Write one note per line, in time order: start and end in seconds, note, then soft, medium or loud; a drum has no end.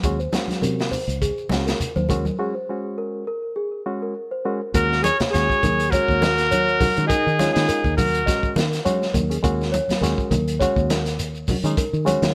0.03 0.26 D#2 medium
0.03 0.19 G#3 medium
0.03 0.19 C#4 medium
0.03 0.19 F#4 loud
0.03 0.16 G#4 medium
0.03 kick medium
0.03 closed hi-hat medium
0.03 shekere medium
0.19 0.42 C5 medium
0.19 shekere soft
0.33 0.88 G#3 medium
0.33 0.88 C#4 medium
0.33 0.89 F#4 medium
0.33 snare medium
0.33 closed hi-hat soft
0.33 high conga loud
0.33 shekere medium
0.48 snare soft
0.48 closed hi-hat soft
0.48 high conga medium
0.48 shekere soft
0.62 0.98 C3 medium
0.62 0.85 A#4 medium
0.62 closed hi-hat medium
0.62 high conga medium
0.62 shekere medium
0.79 snare medium
0.79 shekere soft
0.91 1.15 C5 medium
0.91 open hi-hat medium
0.91 low conga medium
0.91 shekere medium
1.08 1.31 C#2 medium
1.08 closed hi-hat soft
1.08 shekere soft
1.21 1.44 G#4 medium
1.21 kick medium
1.21 closed hi-hat medium
1.21 shekere medium
1.38 shekere soft
1.49 1.73 C#2 medium
1.49 1.78 G#3 medium
1.49 1.78 C#4 medium
1.49 1.79 F#4 medium
1.49 snare medium
1.49 closed hi-hat soft
1.49 high conga medium
1.49 shekere medium
1.66 1.90 A#4 medium
1.66 snare medium
1.66 closed hi-hat medium
1.66 shekere soft
1.80 closed hi-hat medium
1.80 low conga medium
1.80 shekere medium
1.96 2.30 D#2 medium
1.96 2.07 C5 medium
1.96 high conga medium
1.96 shekere soft
2.09 2.24 G#3 medium
2.09 2.25 C#4 medium
2.09 2.25 F#4 loud
2.09 2.33 A#4 medium
2.09 kick medium
2.09 closed hi-hat medium
2.09 low conga medium
2.09 shekere medium
2.25 high conga medium
2.25 shekere soft
2.39 2.54 G#3 medium
2.39 2.54 C#4 medium
2.39 2.54 F#4 loud
2.39 2.51 G#4 medium
2.55 2.78 C5 medium
2.69 3.24 G#3 medium
2.69 3.24 C#4 medium
2.69 3.24 F#4 medium
2.98 3.21 A#4 medium
3.27 3.50 A#4 medium
3.56 3.79 G#4 medium
3.86 4.13 G#3 medium
3.86 4.13 C#4 medium
3.86 4.13 F#4 medium
4.02 4.26 A#4 medium
4.31 4.42 C5 medium
4.45 4.60 G#3 loud
4.45 4.60 C#4 medium
4.45 4.60 F#4 loud
4.45 4.68 A#4 medium
4.74 5.10 D#2 medium
4.74 5.02 G#3 medium
4.74 5.02 C#4 medium
4.74 5.02 F#4 medium
4.74 4.98 A#4 medium
4.74 5.02 A#4 medium
4.74 kick loud
4.74 closed hi-hat medium
4.74 shekere loud
4.92 snare soft
4.92 shekere soft
5.03 5.16 G#4 medium
5.03 5.17 C#5 loud
5.03 5.28 C#5 medium
5.03 closed hi-hat medium
5.03 high conga medium
5.03 shekere medium
5.20 muted fingered electric bass stroke soft
5.20 snare medium
5.20 closed hi-hat soft
5.20 low conga medium
5.20 shekere soft
5.31 5.46 D#2 medium
5.31 5.61 G#3 medium
5.31 5.61 C#4 medium
5.31 5.92 G#4 medium
5.31 5.93 C#5 loud
5.31 snare soft
5.31 closed hi-hat medium
5.31 shekere medium
5.35 5.61 F#4 medium
5.50 kick medium
5.50 shekere soft
5.63 5.98 D#2 loud
5.63 5.86 A#4 medium
5.63 kick medium
5.63 closed hi-hat medium
5.63 high conga medium
5.63 low conga medium
5.63 shekere medium
5.79 closed hi-hat soft
5.79 shekere soft
5.90 6.34 G#3 medium
5.90 6.34 C#4 medium
5.90 7.06 F#4 medium
5.90 7.07 A#4 loud
5.90 6.16 C#5 medium
5.90 kick medium
5.90 closed hi-hat medium
5.90 shekere medium
5.95 6.35 F#4 medium
6.08 6.77 D#2 medium
6.08 kick medium
6.08 shekere soft
6.21 6.44 A#4 medium
6.21 snare medium
6.21 closed hi-hat medium
6.21 high conga loud
6.21 shekere medium
6.38 snare soft
6.38 closed hi-hat medium
6.38 shekere soft
6.51 6.74 C#5 medium
6.51 closed hi-hat medium
6.51 high conga medium
6.51 shekere medium
6.68 shekere soft
6.80 6.87 C#4 medium
6.80 6.88 F#4 loud
6.80 7.03 A#4 medium
6.80 kick medium
6.80 open hi-hat medium
6.80 high conga medium
6.80 low conga medium
6.80 shekere medium
6.96 7.08 D#3 medium
6.96 7.16 G#3 medium
6.96 7.16 C#4 medium
6.96 7.16 F#4 medium
6.96 closed hi-hat medium
6.96 shekere soft
7.07 7.50 D#4 medium
7.07 7.50 G#4 medium
7.07 7.32 A#4 medium
7.07 kick medium
7.07 closed hi-hat medium
7.07 shekere medium
7.27 7.49 D#3 medium
7.27 shekere soft
7.39 7.80 G#3 medium
7.39 7.80 C#4 medium
7.39 7.80 F4 medium
7.39 7.62 C#5 medium
7.39 snare soft
7.39 closed hi-hat medium
7.39 high conga medium
7.39 shekere medium
7.53 7.66 D#3 loud
7.53 7.94 D#4 medium
7.53 7.93 G#4 medium
7.53 snare medium
7.53 closed hi-hat medium
7.53 shekere soft
7.68 7.91 A#4 medium
7.68 closed hi-hat medium
7.68 shekere medium
7.84 8.27 D#2 medium
7.84 kick medium
7.84 shekere soft
7.97 8.52 F#4 medium
7.97 8.52 A#4 medium
7.97 8.20 A#4 medium
7.97 kick medium
7.97 open hi-hat medium
7.97 high conga medium
7.97 low conga medium
7.97 shekere medium
8.14 closed hi-hat medium
8.14 shekere soft
8.26 8.39 A#1 loud
8.26 8.54 G#3 medium
8.26 8.54 C#4 medium
8.26 8.54 F#4 medium
8.26 8.49 D#5 medium
8.26 kick medium
8.26 snare soft
8.26 closed hi-hat medium
8.26 shekere medium
8.43 kick medium
8.43 shekere soft
8.56 8.79 D#3 medium
8.56 8.79 A#4 medium
8.56 snare medium
8.56 closed hi-hat medium
8.56 high conga loud
8.56 shekere medium
8.73 snare soft
8.73 closed hi-hat medium
8.73 shekere soft
8.85 9.06 G#3 medium
8.85 9.06 C#4 medium
8.85 9.06 F#4 loud
8.85 9.08 C#5 medium
8.85 closed hi-hat medium
8.85 high conga medium
8.85 shekere medium
9.02 snare soft
9.02 shekere soft
9.14 9.37 D#2 medium
9.14 9.37 A#4 medium
9.14 kick medium
9.14 closed hi-hat medium
9.14 high conga medium
9.14 low conga medium
9.14 shekere medium
9.30 9.36 C#4 loud
9.30 9.36 G#4 loud
9.30 closed hi-hat medium
9.30 shekere soft
9.43 9.79 D#2 medium
9.43 9.70 G#3 medium
9.43 9.71 C#4 medium
9.43 9.71 F#4 loud
9.43 9.66 A#4 medium
9.43 kick medium
9.43 closed hi-hat medium
9.43 shekere medium
9.61 snare soft
9.61 shekere soft
9.72 9.95 C#5 medium
9.72 closed hi-hat medium
9.72 high conga medium
9.72 shekere medium
9.88 muted fingered electric bass stroke soft
9.88 snare medium
9.88 closed hi-hat medium
9.88 high conga medium
9.88 shekere soft
10.01 10.14 D#2 medium
10.01 10.29 G#3 loud
10.01 10.30 C#4 medium
10.01 10.30 F#4 medium
10.01 10.24 A#4 medium
10.01 snare soft
10.01 closed hi-hat medium
10.01 shekere medium
10.18 kick medium
10.18 shekere soft
10.30 10.66 D#2 loud
10.30 10.54 A#4 medium
10.30 kick medium
10.30 closed hi-hat medium
10.30 high conga medium
10.30 low conga medium
10.30 shekere medium
10.48 closed hi-hat medium
10.48 shekere soft
10.60 11.02 G#3 medium
10.60 11.02 C#4 medium
10.60 11.02 F#4 loud
10.60 10.83 C#5 medium
10.60 kick medium
10.60 closed hi-hat medium
10.60 shekere medium
10.76 11.45 D#2 medium
10.76 kick medium
10.76 shekere soft
10.90 11.13 A#4 medium
10.90 snare medium
10.90 closed hi-hat medium
10.90 high conga medium
10.90 shekere medium
11.06 snare soft
11.06 closed hi-hat soft
11.06 shekere soft
11.19 closed hi-hat medium
11.19 shekere medium
11.35 shekere soft
11.48 11.56 C#4 loud
11.48 11.56 F#4 loud
11.48 11.71 A#4 medium
11.48 kick medium
11.48 open hi-hat medium
11.48 high conga medium
11.48 low conga medium
11.48 shekere medium
11.64 11.74 D#3 medium
11.64 11.84 G#3 medium
11.64 11.83 C#4 medium
11.64 11.84 D#4 medium
11.64 closed hi-hat medium
11.64 shekere soft
11.77 12.00 A#4 medium
11.77 kick medium
11.77 closed hi-hat medium
11.77 shekere medium
11.93 12.16 D#3 medium
11.93 shekere soft
12.05 12.34 G#3 loud
12.05 12.34 C#4 medium
12.05 12.34 F#4 loud
12.05 12.29 C#5 medium
12.05 closed hi-hat medium
12.05 high conga loud
12.05 shekere medium
12.22 12.33 D#3 loud
12.22 snare medium
12.22 closed hi-hat medium
12.22 high conga medium
12.22 shekere soft